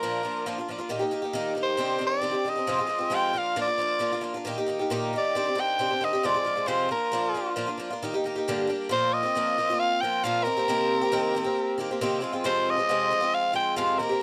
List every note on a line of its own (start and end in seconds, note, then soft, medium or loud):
0.00 0.25 A#2 medium
0.00 0.22 F3 medium
0.00 0.23 A#3 medium
0.00 0.23 D4 medium
0.00 0.24 F4 medium
0.00 0.48 A#4 medium
0.23 0.45 F3 medium
0.23 0.45 A#3 medium
0.23 0.47 D4 medium
0.23 0.46 F4 medium
0.46 0.58 A#2 medium
0.46 0.58 F3 medium
0.46 0.58 A#3 medium
0.46 0.58 D4 medium
0.46 0.57 F4 medium
0.58 0.68 A#3 soft
0.58 0.69 D4 medium
0.58 0.69 F4 medium
0.68 0.80 F3 medium
0.68 0.80 A#3 medium
0.68 0.78 D4 medium
0.68 0.77 F4 medium
0.78 0.89 A#3 medium
0.78 0.90 D4 medium
0.78 0.90 F4 medium
0.89 1.01 A#2 medium
0.89 1.02 D#3 medium
0.89 1.01 A#3 medium
0.89 1.00 D#4 medium
0.89 0.98 G4 medium
0.99 1.11 A#3 soft
0.99 1.12 D#4 medium
0.99 1.12 G4 medium
1.11 1.24 D#3 medium
1.11 1.24 A#3 medium
1.11 1.23 D#4 medium
1.11 1.21 G4 medium
1.22 1.34 A#3 soft
1.22 1.34 D#4 medium
1.22 1.34 G4 medium
1.33 1.57 A#2 medium
1.33 1.54 D#3 medium
1.33 1.55 A#3 medium
1.33 1.56 D#4 loud
1.33 1.57 G4 medium
1.55 1.76 D#3 medium
1.55 1.78 A#3 medium
1.55 1.79 D#4 medium
1.55 1.78 G4 medium
1.63 2.02 C5 medium
1.77 2.01 C3 medium
1.77 1.97 D#3 medium
1.77 1.98 C4 medium
1.77 2.00 D4 medium
1.77 2.01 G4 medium
1.98 2.20 D#3 medium
1.98 2.22 C4 medium
1.98 2.22 D4 medium
1.98 2.22 G4 medium
2.07 2.51 D5 medium
2.21 2.34 C3 medium
2.21 2.34 D#3 medium
2.21 2.33 C4 medium
2.21 2.33 D4 medium
2.21 2.30 G4 medium
2.31 2.44 C4 soft
2.31 2.46 D4 soft
2.31 2.45 G4 soft
2.44 2.57 D#3 soft
2.44 2.58 C4 medium
2.44 2.56 D4 medium
2.44 2.54 G4 medium
2.49 3.17 D#5 medium
2.55 2.67 C4 soft
2.55 2.68 D4 medium
2.55 2.68 G4 medium
2.67 2.79 F2 medium
2.67 2.79 C3 medium
2.67 2.79 F3 medium
2.67 2.79 G#3 medium
2.67 2.78 C4 medium
2.67 2.77 F4 medium
2.78 2.86 F3 soft
2.78 2.86 G#3 soft
2.78 2.88 C4 medium
2.78 2.89 F4 medium
2.87 2.99 F3 medium
2.87 3.00 G#3 medium
2.87 2.98 C4 medium
2.87 2.97 F4 medium
2.98 3.10 F3 soft
2.98 3.11 G#3 soft
2.98 3.10 C4 medium
2.98 3.11 F4 medium
3.10 3.34 F2 medium
3.10 3.34 C3 medium
3.10 3.31 F3 medium
3.10 3.33 G#3 medium
3.10 3.34 C4 medium
3.10 3.35 F4 medium
3.15 3.40 G5 medium
3.33 3.55 F3 soft
3.33 3.56 A#3 medium
3.33 3.55 D4 medium
3.33 3.56 F4 medium
3.38 3.59 F5 medium
3.56 3.68 A#2 medium
3.56 3.68 F3 medium
3.56 3.69 A#3 medium
3.56 3.67 D4 medium
3.56 3.66 F4 medium
3.62 4.23 D5 medium
3.67 3.78 A#3 soft
3.67 3.79 D4 soft
3.67 3.79 F4 soft
3.78 3.99 F3 medium
3.78 3.99 A#3 medium
3.78 4.00 D4 medium
3.78 4.01 F4 medium
3.99 4.12 A#2 medium
3.99 4.12 F3 medium
3.99 4.13 A#3 medium
3.99 4.12 D4 medium
3.99 4.11 F4 medium
4.12 4.20 A#3 soft
4.12 4.21 D4 soft
4.12 4.22 F4 medium
4.21 4.34 F3 medium
4.21 4.34 A#3 medium
4.21 4.35 D4 medium
4.21 4.33 F4 medium
4.34 4.45 A#3 medium
4.34 4.47 D4 medium
4.34 4.46 F4 medium
4.45 4.57 A#2 medium
4.45 4.57 D#3 medium
4.45 4.58 A#3 medium
4.45 4.57 D#4 medium
4.45 4.56 G4 loud
4.58 4.66 A#3 medium
4.58 4.68 D#4 medium
4.58 4.68 G4 medium
4.66 4.79 D#3 medium
4.66 4.80 A#3 medium
4.66 4.80 D#4 medium
4.66 4.78 G4 medium
4.79 4.90 A#3 medium
4.79 4.90 D#4 medium
4.79 4.91 G4 medium
4.90 5.13 A#2 medium
4.90 5.12 D#3 loud
4.90 5.12 A#3 medium
4.90 5.14 D#4 loud
4.90 5.14 G4 loud
5.13 5.35 D#3 medium
5.13 5.36 A#3 medium
5.13 5.36 D#4 medium
5.13 5.36 G4 medium
5.18 5.62 D5 medium
5.35 5.47 C3 medium
5.35 5.47 D#3 medium
5.35 5.47 C4 medium
5.35 5.46 D4 medium
5.35 5.45 G4 medium
5.46 5.55 C4 soft
5.46 5.57 D4 soft
5.46 5.57 G4 soft
5.55 5.78 D#3 medium
5.55 5.78 C4 medium
5.55 5.79 D4 medium
5.55 5.80 G4 medium
5.61 6.06 G5 loud
5.79 5.91 C3 medium
5.79 5.91 D#3 medium
5.79 5.91 C4 medium
5.79 5.90 D4 medium
5.79 5.89 G4 medium
5.90 6.00 C4 soft
5.90 6.01 D4 soft
5.90 6.02 G4 soft
6.01 6.13 D#3 medium
6.01 6.13 C4 medium
6.01 6.14 D4 medium
6.01 6.12 G4 medium
6.01 6.28 D#5 medium
6.13 6.23 C4 soft
6.13 6.24 D4 medium
6.13 6.24 G4 medium
6.23 6.35 F2 medium
6.23 6.35 C3 medium
6.23 6.36 F3 medium
6.23 6.35 G#3 medium
6.23 6.34 C4 medium
6.23 6.33 F4 medium
6.23 6.69 D5 loud
6.34 6.43 F3 soft
6.34 6.45 G#3 medium
6.34 6.45 C4 medium
6.34 6.46 F4 medium
6.45 6.57 F3 medium
6.45 6.56 G#3 medium
6.45 6.55 C4 medium
6.45 6.54 F4 medium
6.55 6.67 F3 soft
6.55 6.67 G#3 soft
6.55 6.67 C4 medium
6.55 6.67 F4 medium
6.66 6.90 F2 medium
6.66 6.91 C3 medium
6.66 6.88 F3 medium
6.66 6.90 G#3 medium
6.66 6.90 C4 medium
6.66 6.90 F4 medium
6.66 6.91 C5 medium
6.89 7.12 F3 medium
6.89 7.12 A#3 medium
6.89 7.12 D4 medium
6.89 7.13 F4 medium
6.89 7.54 A#4 medium
7.12 7.35 A#2 medium
7.12 7.33 F3 medium
7.12 7.34 A#3 medium
7.12 7.35 D4 medium
7.12 7.36 F4 medium
7.34 7.55 F3 medium
7.34 7.55 A#3 medium
7.34 7.56 D4 medium
7.34 7.57 F4 medium
7.56 7.68 A#2 medium
7.56 7.68 F3 medium
7.56 7.68 A#3 loud
7.56 7.67 D4 medium
7.56 7.65 F4 medium
7.67 7.78 A#3 soft
7.67 7.79 D4 medium
7.67 7.79 F4 medium
7.78 7.90 F3 medium
7.78 7.91 A#3 medium
7.78 7.91 D4 medium
7.78 7.89 F4 medium
7.90 8.02 A#3 medium
7.90 8.03 D4 medium
7.90 8.02 F4 medium
8.02 8.14 A#2 medium
8.02 8.14 D#3 medium
8.02 8.14 A#3 medium
8.02 8.14 D#4 medium
8.02 8.13 G4 medium
8.14 8.24 A#3 soft
8.14 8.25 D#4 medium
8.14 8.25 G4 medium
8.24 8.35 D#3 medium
8.24 8.36 A#3 medium
8.24 8.36 D#4 medium
8.24 8.34 G4 medium
8.36 8.48 A#3 soft
8.36 8.48 D#4 medium
8.36 8.47 G4 medium
8.48 8.70 G2 medium
8.48 8.70 D3 loud
8.48 8.66 G3 medium
8.48 8.68 A#3 loud
8.48 8.69 D4 loud
8.48 8.69 G4 medium
8.67 8.89 G3 medium
8.67 8.90 A#3 medium
8.67 8.90 D4 medium
8.67 8.91 G4 medium
8.89 9.24 A#2 medium
8.89 9.24 F3 medium
8.89 9.24 A#3 medium
8.89 9.23 C4 medium
8.89 9.22 F4 medium
8.89 9.15 C5 loud
9.13 9.81 D#5 loud
9.23 9.36 A#3 soft
9.23 9.35 C4 soft
9.23 9.35 F4 medium
9.35 9.58 A#2 medium
9.35 9.57 F3 medium
9.35 9.57 A#3 medium
9.35 9.58 C4 medium
9.35 9.59 F4 medium
9.58 9.69 F3 medium
9.58 9.69 A#3 medium
9.58 9.70 C4 medium
9.58 9.69 F4 medium
9.70 10.03 A#3 soft
9.70 10.03 C4 medium
9.70 10.03 F4 medium
9.80 10.02 F5 loud
10.01 10.24 F3 medium
10.01 10.24 A#3 medium
10.01 10.24 C4 medium
10.01 10.25 F4 medium
10.01 10.25 G5 loud
10.24 10.46 A#2 medium
10.24 10.44 F3 medium
10.24 10.44 A#3 loud
10.24 10.45 C4 medium
10.24 10.47 F4 loud
10.24 10.45 F5 medium
10.44 10.57 D#3 medium
10.44 10.57 A#3 medium
10.44 10.56 C4 medium
10.44 10.56 G4 medium
10.44 11.78 A#4 loud
10.57 10.68 A#3 medium
10.57 10.68 C4 medium
10.57 10.68 G4 medium
10.68 11.02 C3 medium
10.68 11.02 D#3 medium
10.68 11.02 A#3 medium
10.68 11.02 C4 loud
10.68 11.00 G4 medium
11.01 11.12 A#3 medium
11.01 11.12 C4 medium
11.01 11.12 G4 medium
11.12 11.34 C3 medium
11.12 11.33 D#3 medium
11.12 11.35 A#3 medium
11.12 11.35 C4 loud
11.12 11.35 G4 loud
11.35 11.46 D#3 medium
11.35 11.45 A#3 medium
11.35 11.45 C4 medium
11.35 11.43 G4 medium
11.44 11.78 A#3 medium
11.44 11.79 C4 medium
11.44 11.78 G4 medium
11.78 11.89 D#3 medium
11.78 11.90 A#3 medium
11.78 11.90 C4 medium
11.78 11.90 G4 medium
11.91 12.00 A#3 medium
11.91 12.01 C4 medium
11.91 12.02 G4 medium
12.01 12.23 C3 loud
12.01 12.20 D#3 loud
12.01 12.21 A#3 loud
12.01 12.21 C4 medium
12.01 12.23 G4 loud
12.21 12.33 F3 medium
12.21 12.33 G#3 medium
12.21 12.32 C4 medium
12.21 12.31 F4 medium
12.33 12.44 F3 soft
12.33 12.44 G#3 soft
12.33 12.44 C4 medium
12.33 12.44 F4 medium
12.44 12.78 F2 medium
12.44 12.78 C3 medium
12.44 12.78 F3 medium
12.44 12.78 G#3 medium
12.44 12.77 C4 loud
12.44 12.76 F4 loud
12.44 12.72 C5 loud
12.70 13.36 D#5 loud
12.77 12.88 F3 medium
12.77 12.89 G#3 medium
12.77 12.90 C4 medium
12.77 12.89 F4 medium
12.89 13.12 F2 medium
12.89 13.12 C3 medium
12.89 13.10 F3 medium
12.89 13.10 G#3 medium
12.89 13.11 C4 medium
12.89 13.11 F4 medium
13.11 13.22 F3 medium
13.11 13.21 G#3 medium
13.11 13.21 C4 medium
13.11 13.19 F4 medium
13.20 13.52 F3 medium
13.20 13.52 G#3 medium
13.20 13.53 C4 medium
13.20 13.54 F4 medium
13.34 13.55 F5 loud
13.53 13.76 F3 medium
13.53 13.77 G#3 medium
13.53 13.77 C4 medium
13.53 13.77 F4 medium
13.53 13.76 G5 loud
13.76 13.99 F2 medium
13.76 13.99 C3 loud
13.76 13.99 F3 medium
13.76 13.99 G#3 medium
13.76 13.99 C4 loud
13.76 14.00 F4 medium
13.76 14.00 F5 medium
13.99 14.11 D#3 medium
13.99 14.11 A#3 medium
13.99 14.10 C4 medium
13.99 14.08 G4 medium
13.99 14.23 A#4 medium
14.09 14.22 A#3 medium
14.09 14.22 C4 medium
14.09 14.21 G4 medium